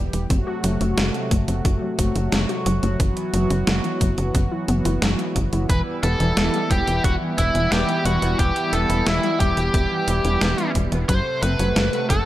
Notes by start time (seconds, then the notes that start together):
Already playing: E3 G3 B3 G4
0.13 E1, closed hi-hat
0.30 F#1 C3 F#3 A3 C4 F#4, kick, closed hi-hat
0.47 F#4
0.64 F#1 F#3, closed hi-hat
0.81 F#1 A3, closed hi-hat
0.97 F#1 F#3, snare, closed hi-hat
1.14 closed hi-hat
1.31 F#1 A3, kick, closed hi-hat
1.48 F#1 C4, closed hi-hat
1.65 F#1 F#4, kick, closed hi-hat
1.82 F#3
1.99 F#1 A3, kick, closed hi-hat
2.16 F#1, closed hi-hat
2.32 F#1 C4, snare, closed hi-hat
2.49 F#4, closed hi-hat
2.66 F#1 F#3, closed hi-hat
2.83 F#1 A3, closed hi-hat
3.00 F#1 E3 B3, kick, closed hi-hat
3.17 closed hi-hat
3.34 F#1 F#3, closed hi-hat
3.50 F#1 B3, closed hi-hat
3.67 F#1 E4, snare, closed hi-hat
3.84 E3, closed hi-hat
4.01 F#1 F#3, kick, closed hi-hat
4.18 F#1, closed hi-hat
4.35 F#1 B3, kick, closed hi-hat
4.52 E4
4.68 F#1 B3, closed hi-hat
4.85 F#1 E4, closed hi-hat
5.02 F#1 F#3, snare, closed hi-hat
5.19 closed hi-hat
5.36 F#1 F#4, kick, closed hi-hat
5.53 F#1 E4, closed hi-hat
5.69 E1 E3 G3 E4 B4, kick, closed hi-hat
6.03 E1 B3 A4, closed hi-hat
6.20 E1 E3, closed hi-hat
6.37 E1, snare, closed hi-hat
6.54 G3, closed hi-hat
6.71 E1 G3 G4, kick, closed hi-hat
6.87 E1, closed hi-hat
7.04 E1 E4 F#4, kick, closed hi-hat
7.21 E3
7.38 E1 E4, kick, closed hi-hat
7.55 E1 E3, closed hi-hat
7.72 E1 B3 G4, snare, closed hi-hat
7.89 closed hi-hat
8.05 E1 G3 F#4, closed hi-hat
8.22 E1 B3, closed hi-hat
8.39 E1 E3 G4, kick, closed hi-hat
8.56 closed hi-hat
8.73 E1 B3 A4, closed hi-hat
8.90 E1 E3, closed hi-hat
9.07 E1 E4, snare, closed hi-hat
9.23 G3, closed hi-hat
9.40 E1 G3 G4, kick, closed hi-hat
9.57 E1, closed hi-hat
9.74 E1 E4, kick, closed hi-hat
9.91 E3
10.08 E1, closed hi-hat
10.25 E1 E3, closed hi-hat
10.41 E1 B3, snare, closed hi-hat
10.58 closed hi-hat
10.75 E1 G3, kick, closed hi-hat
10.92 E1 B3, closed hi-hat
11.09 F#1 C3 F#3 A3 C5 F#5, kick, closed hi-hat
11.42 F#1 C4 B4, closed hi-hat
11.59 F#1 F#3, closed hi-hat
11.76 F#1, snare, closed hi-hat
11.93 A3, closed hi-hat
12.10 F#1 A3 A4, kick, closed hi-hat